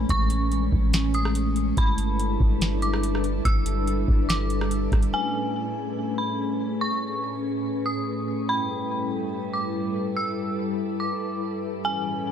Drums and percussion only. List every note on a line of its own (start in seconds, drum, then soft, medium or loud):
0.09 kick loud
0.09 closed hi-hat medium
0.30 closed hi-hat medium
0.52 closed hi-hat medium
0.72 kick medium
0.93 snare loud
0.93 closed hi-hat medium
1.14 closed hi-hat medium
1.25 cross-stick loud
1.35 closed hi-hat medium
1.56 closed hi-hat medium
1.77 kick loud
1.77 closed hi-hat medium
1.98 closed hi-hat medium
2.19 closed hi-hat medium
2.40 kick medium
2.61 snare loud
2.61 closed hi-hat medium
2.82 closed hi-hat medium
2.93 cross-stick loud
3.03 closed hi-hat medium
3.15 cross-stick medium
3.24 closed hi-hat medium
3.45 kick loud
3.45 closed hi-hat medium
3.66 closed hi-hat medium
3.87 closed hi-hat medium
4.08 kick medium
4.30 snare loud
4.30 closed hi-hat medium
4.50 closed hi-hat medium
4.61 cross-stick loud
4.71 closed hi-hat medium
4.92 kick medium
4.92 cross-stick medium
4.92 closed hi-hat soft
5.03 closed hi-hat medium